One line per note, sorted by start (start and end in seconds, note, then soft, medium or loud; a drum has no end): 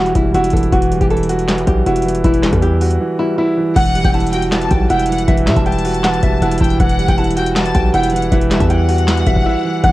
0.00 0.13 E1 loud
0.00 0.53 E3 medium
0.00 0.15 G3 medium
0.00 0.34 E4 loud
0.00 0.13 F#4 loud
0.00 0.74 F#4 medium
0.06 closed hi-hat medium
0.15 0.34 E1 loud
0.15 0.72 G3 medium
0.15 0.32 E4 medium
0.15 kick loud
0.15 closed hi-hat medium
0.34 0.53 E1 loud
0.34 0.72 E4 loud
0.34 0.52 F#4 medium
0.34 closed hi-hat medium
0.44 closed hi-hat medium
0.50 0.72 E1 loud
0.50 0.71 E3 medium
0.50 0.70 A4 medium
0.50 kick loud
0.50 closed hi-hat medium
0.57 closed hi-hat medium
0.63 closed hi-hat medium
0.72 1.00 E1 loud
0.72 1.47 E3 loud
0.72 0.99 F#4 loud
0.72 kick loud
0.72 closed hi-hat medium
0.82 closed hi-hat medium
0.91 1.66 G3 medium
0.91 closed hi-hat medium
1.01 1.65 E1 loud
1.01 1.09 G4 medium
1.01 kick medium
1.01 closed hi-hat medium
1.10 1.85 E4 medium
1.10 1.64 A4 medium
1.10 closed hi-hat soft
1.17 closed hi-hat medium
1.23 closed hi-hat medium
1.29 2.24 F#4 loud
1.29 closed hi-hat medium
1.39 closed hi-hat medium
1.48 2.04 E3 medium
1.48 snare loud
1.48 clap medium
1.48 closed hi-hat medium
1.58 closed hi-hat medium
1.67 1.85 B1 loud
1.67 2.42 G3 medium
1.67 1.84 G4 medium
1.67 kick medium
1.67 closed hi-hat medium
1.86 2.23 E1 loud
1.86 2.61 E4 loud
1.86 2.22 F#4 medium
1.86 closed hi-hat medium
1.96 closed hi-hat medium
2.02 2.23 E3 medium
2.02 closed hi-hat medium
2.08 closed hi-hat medium
2.15 closed hi-hat medium
2.24 2.52 E1 loud
2.24 2.99 E3 medium
2.24 2.51 E4 medium
2.24 kick loud
2.24 closed hi-hat medium
2.34 closed hi-hat medium
2.43 3.18 G3 medium
2.43 snare medium
2.43 clap medium
2.43 closed hi-hat medium
2.53 2.98 E2 loud
2.53 2.61 A4 medium
2.53 kick medium
2.53 closed hi-hat medium
2.62 3.37 E4 medium
2.62 2.98 G4 medium
2.62 closed hi-hat medium
2.81 3.76 F#4 medium
2.81 open hi-hat medium
2.91 closed hi-hat medium
3.00 3.56 E3 medium
3.19 3.76 G3 medium
3.19 3.36 E4 medium
3.38 3.55 E4 medium
3.38 3.76 E4 loud
3.57 3.75 E3 medium
3.76 4.03 E1 loud
3.76 4.51 E3 medium
3.76 4.30 F#5 loud
3.76 4.03 F#5 loud
3.76 kick loud
3.76 closed hi-hat medium
3.76 crash loud
3.86 closed hi-hat medium
3.95 4.69 G3 medium
3.95 closed hi-hat medium
4.05 4.68 E1 loud
4.05 4.13 G5 medium
4.05 kick loud
4.05 closed hi-hat medium
4.14 4.88 E4 medium
4.14 4.68 A5 medium
4.14 closed hi-hat soft
4.20 closed hi-hat medium
4.27 closed hi-hat medium
4.33 5.28 F#4 medium
4.33 4.51 G5 medium
4.33 closed hi-hat medium
4.42 closed hi-hat medium
4.52 5.07 E3 medium
4.52 4.88 A5 medium
4.52 snare loud
4.52 clap medium
4.52 closed hi-hat medium
4.62 closed hi-hat medium
4.71 4.89 B1 loud
4.71 5.46 G3 medium
4.71 4.88 G5 medium
4.71 kick loud
4.71 closed hi-hat medium
4.90 5.26 E1 loud
4.90 5.64 E4 loud
4.90 5.26 F#5 medium
4.90 5.08 G5 medium
4.90 closed hi-hat medium
5.00 closed hi-hat medium
5.06 5.26 E3 medium
5.06 5.27 F#5 medium
5.06 closed hi-hat medium
5.12 closed hi-hat medium
5.18 closed hi-hat medium
5.28 5.48 E1 loud
5.28 6.02 E3 medium
5.28 5.55 E5 loud
5.28 kick loud
5.28 closed hi-hat medium
5.38 closed hi-hat medium
5.47 5.56 B2 loud
5.47 6.21 G3 medium
5.47 5.65 E5 medium
5.47 snare loud
5.47 clap medium
5.47 closed hi-hat medium
5.56 6.20 E1 loud
5.56 5.65 A5 medium
5.56 kick loud
5.56 closed hi-hat medium
5.66 6.40 E4 medium
5.66 6.02 G5 medium
5.66 6.57 A5 medium
5.66 closed hi-hat soft
5.72 closed hi-hat medium
5.79 closed hi-hat medium
5.85 6.80 F#4 loud
5.85 open hi-hat medium
5.94 closed hi-hat medium
6.04 6.59 E3 medium
6.04 6.21 F#5 loud
6.04 snare loud
6.04 clap medium
6.04 closed hi-hat medium
6.14 closed hi-hat medium
6.23 6.41 E1 loud
6.23 6.80 G3 medium
6.23 6.40 E5 medium
6.23 kick loud
6.23 closed hi-hat medium
6.42 6.60 E1 loud
6.42 6.80 E4 loud
6.42 6.59 F#5 medium
6.42 closed hi-hat medium
6.51 closed hi-hat medium
6.58 6.79 E1 loud
6.58 6.78 E3 medium
6.58 6.79 G5 medium
6.58 6.78 A5 medium
6.58 kick loud
6.58 closed hi-hat medium
6.64 closed hi-hat medium
6.70 closed hi-hat medium
6.80 7.07 E1 loud
6.80 7.54 E3 loud
6.80 7.33 F#5 loud
6.80 7.07 F#5 loud
6.80 kick loud
6.80 closed hi-hat medium
6.89 closed hi-hat medium
6.99 7.73 G3 medium
6.99 closed hi-hat medium
7.08 7.72 E1 loud
7.08 7.17 G5 medium
7.08 kick loud
7.08 closed hi-hat medium
7.18 7.92 E4 medium
7.18 7.71 A5 medium
7.18 closed hi-hat soft
7.24 closed hi-hat medium
7.31 closed hi-hat medium
7.37 8.32 F#4 loud
7.37 7.55 G5 medium
7.37 closed hi-hat medium
7.46 closed hi-hat medium
7.56 8.11 E3 medium
7.56 7.92 A5 medium
7.56 snare loud
7.56 clap medium
7.56 closed hi-hat medium
7.65 closed hi-hat medium
7.75 7.93 B1 loud
7.75 8.49 G3 medium
7.75 7.92 G5 medium
7.75 kick loud
7.75 closed hi-hat medium
7.94 8.30 E1 loud
7.94 8.68 E4 loud
7.94 8.30 F#5 medium
7.94 8.12 G5 medium
7.94 closed hi-hat medium
8.03 closed hi-hat medium
8.10 8.30 E3 medium
8.10 8.31 F#5 medium
8.10 closed hi-hat medium
8.16 closed hi-hat medium
8.22 closed hi-hat medium
8.32 8.59 E1 loud
8.32 9.06 E3 loud
8.32 8.59 E5 medium
8.32 kick loud
8.32 closed hi-hat medium
8.41 closed hi-hat medium
8.51 9.25 G3 medium
8.51 8.69 E5 medium
8.51 snare loud
8.51 clap medium
8.51 closed hi-hat medium
8.60 9.24 E2 loud
8.60 8.69 A5 medium
8.60 kick loud
8.60 closed hi-hat medium
8.70 9.44 E4 medium
8.70 9.80 F#5 loud
8.70 9.06 G5 medium
8.70 closed hi-hat medium
8.89 9.84 F#4 medium
8.89 open hi-hat medium
8.98 closed hi-hat medium
9.08 9.63 E3 medium
9.08 snare loud
9.08 clap medium
9.08 closed hi-hat medium
9.17 closed hi-hat medium
9.27 9.36 D1 loud
9.27 9.84 G3 medium
9.27 9.44 E5 medium
9.27 kick loud
9.27 closed hi-hat medium
9.36 9.45 E1 loud
9.36 kick loud
9.46 9.84 E4 loud
9.46 9.63 E5 medium
9.65 9.82 E3 medium
9.84 9.92 E1 loud
9.84 9.92 E3 medium
9.84 9.92 G3 medium
9.84 9.92 B3 medium
9.84 9.92 E4 medium
9.84 9.92 F#5 loud
9.84 kick loud
9.84 closed hi-hat medium